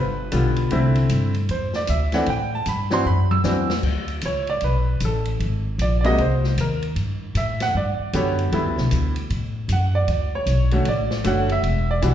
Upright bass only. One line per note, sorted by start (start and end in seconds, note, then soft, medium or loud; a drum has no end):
0.00 0.31 G1 medium
0.32 0.70 B1 medium
0.71 1.09 C2 medium
1.10 1.48 G2 medium
1.49 1.87 E2 medium
1.89 2.26 D2 medium
2.27 2.65 A2 medium
2.66 3.04 G2 medium
3.06 3.43 F#2 medium
3.44 3.82 E2 medium
3.83 4.21 D2 medium
4.23 4.61 C#2 medium
4.62 5.00 B1 medium
5.01 5.39 A1 medium
5.39 5.78 G#1 medium
5.78 6.17 A#1 medium
6.19 6.56 C2 medium
6.57 6.95 D#2 medium
6.96 7.34 G2 medium
7.35 7.73 A2 medium
7.74 7.98 G2 medium
7.99 muted upright bass stroke soft
8.13 8.51 F#2 medium
8.52 8.66 E2 medium
8.66 8.78 D2 soft
8.78 8.91 B1 medium
8.92 9.29 D2 medium
9.30 9.68 A2 medium
9.68 10.07 F#2 medium
10.08 10.46 D2 medium
10.46 10.85 B1 medium
10.86 11.24 A1 medium
11.24 11.62 F#1 medium
11.62 12.01 E1 medium
12.02 12.14 B1 medium